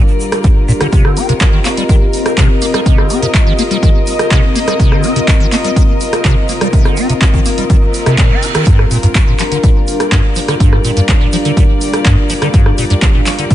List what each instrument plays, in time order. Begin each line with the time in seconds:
Already playing: string section G3 F4 A#4 D5, analog synth pad D4 G4 A#4 F5
0.08 shaker
0.20 shaker
0.32 cross-stick, closed hi-hat, shaker
0.44 acid bass G#2, kick, closed hi-hat, shaker
0.68 acid bass A#2, shaker
0.81 acid bass D3, cross-stick, closed hi-hat, shaker
0.92 acid bass C3, analog synth pad C4 A#4 D#5, string section C4, kick, closed hi-hat, shaker
1.05 acid bass D3, cross-stick
1.17 acid bass C4, open hi-hat, shaker
1.29 acid bass C3, closed hi-hat, shaker
1.40 acid bass C3, kick, clap, closed hi-hat, shaker
1.53 acid bass D#3
1.65 acid bass A#3, clap, open hi-hat, shaker
1.77 acid bass G3, closed hi-hat, shaker
1.89 acid bass D#3, kick, closed hi-hat, shaker
2.13 open hi-hat, shaker
2.26 string section D#5, cross-stick, closed hi-hat, shaker
2.38 acid bass C3, kick, clap, closed hi-hat, shaker
2.62 acid bass A#3, open hi-hat, shaker
2.74 acid bass G3, cross-stick, closed hi-hat, shaker
2.86 acid bass C3, kick, closed hi-hat, shaker
2.98 acid bass D3, cross-stick
3.10 acid bass C4, open hi-hat, shaker
3.22 acid bass C3, closed hi-hat, shaker
3.34 acid bass C3, kick, clap, closed hi-hat, shaker
3.47 acid bass D#3
3.58 acid bass A#3, open hi-hat, shaker
3.71 acid bass G3, closed hi-hat, shaker
3.83 acid bass D#3, kick, closed hi-hat, shaker
4.07 open hi-hat, shaker
4.19 cross-stick, closed hi-hat, shaker
4.31 acid bass C3, kick, clap, closed hi-hat, shaker
4.55 acid bass A#3, open hi-hat, shaker
4.67 acid bass G3, cross-stick, closed hi-hat, shaker
4.80 acid bass C3, kick, closed hi-hat, shaker
4.92 acid bass D3, cross-stick
5.03 acid bass C4, open hi-hat, shaker
5.15 acid bass C3, closed hi-hat, shaker
5.28 acid bass C3, kick, clap, closed hi-hat, shaker
5.40 acid bass D#3
5.52 acid bass A#3, clap, open hi-hat, shaker
5.64 acid bass G3, closed hi-hat, shaker
5.76 acid bass D#3, kick, closed hi-hat, shaker
6.01 open hi-hat, shaker
6.12 cross-stick, closed hi-hat, shaker
6.25 acid bass C3, kick, clap, closed hi-hat, shaker
6.49 acid bass A#3, open hi-hat, shaker
6.61 acid bass G3, cross-stick, closed hi-hat, shaker
6.73 acid bass C3, kick, closed hi-hat, shaker
6.85 acid bass D3, cross-stick, shaker
6.97 acid bass C4, open hi-hat, shaker
7.09 acid bass C3, closed hi-hat, shaker
7.21 acid bass C3, kick, clap, closed hi-hat, shaker
7.34 acid bass D#3, kick, shaker
7.46 acid bass A#3, open hi-hat, shaker
7.58 acid bass G3, closed hi-hat, shaker
7.70 acid bass D#3, kick, closed hi-hat, reverse cymbal, shaker
7.94 open hi-hat, shaker
8.06 acid bass C3, cross-stick, closed hi-hat, shaker
8.18 acid bass A#2, kick, clap, closed hi-hat, shaker
8.31 acid bass C4
8.43 acid bass D#4, open hi-hat, shaker
8.54 acid bass D#3, cross-stick, closed hi-hat, shaker
8.67 acid bass G2, string section G3, analog synth pad D4 G4 F5, kick, closed hi-hat, shaker
8.79 acid bass G#2, cross-stick
8.91 acid bass A#2, open hi-hat, shaker
9.03 acid bass G2, closed hi-hat, shaker
9.15 acid bass G2, kick, clap, closed hi-hat, shaker
9.27 acid bass A#2
9.39 acid bass F3, clap, open hi-hat, shaker
9.52 acid bass D3, closed hi-hat, shaker
9.57 string section D5
9.63 acid bass A#2, kick, closed hi-hat, shaker
9.88 open hi-hat, shaker
10.00 cross-stick, closed hi-hat, shaker
10.12 acid bass G2, kick, clap, closed hi-hat, shaker
10.35 acid bass F3, open hi-hat, shaker
10.48 acid bass D3, cross-stick, closed hi-hat, shaker
10.60 acid bass G2, kick, closed hi-hat, shaker
10.73 acid bass G#2, cross-stick
10.85 acid bass A#2, open hi-hat, shaker
10.96 acid bass G2, closed hi-hat, shaker
11.09 acid bass G2, kick, clap, closed hi-hat, shaker
11.21 acid bass A#2
11.32 acid bass F3, open hi-hat, shaker
11.45 acid bass D3, closed hi-hat, shaker
11.57 acid bass A#2, kick, closed hi-hat, shaker
11.81 open hi-hat, shaker
11.93 cross-stick, closed hi-hat, shaker
12.05 acid bass G2, kick, clap, closed hi-hat, shaker
12.29 acid bass F3, open hi-hat, shaker
12.42 acid bass D3, cross-stick, closed hi-hat, shaker
12.54 acid bass G2, kick, closed hi-hat, shaker
12.66 acid bass G#2, cross-stick
12.78 acid bass A#2, open hi-hat, shaker
12.90 acid bass G2, closed hi-hat, shaker
13.02 acid bass G2, kick, clap, closed hi-hat, shaker
13.15 acid bass A#2
13.26 acid bass F3, clap, open hi-hat, shaker
13.38 acid bass D3, closed hi-hat, shaker
13.51 acid bass A#2, kick, closed hi-hat, shaker